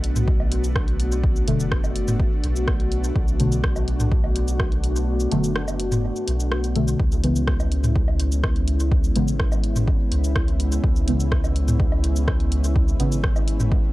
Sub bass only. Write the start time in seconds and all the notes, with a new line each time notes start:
Already playing: B1
1.48 F#1
2.44 B1
3.16 B1
5.31 F#1
6.28 B1
7.00 C#2
9.16 G#1
10.12 C#2
10.84 C#2
13.00 G#1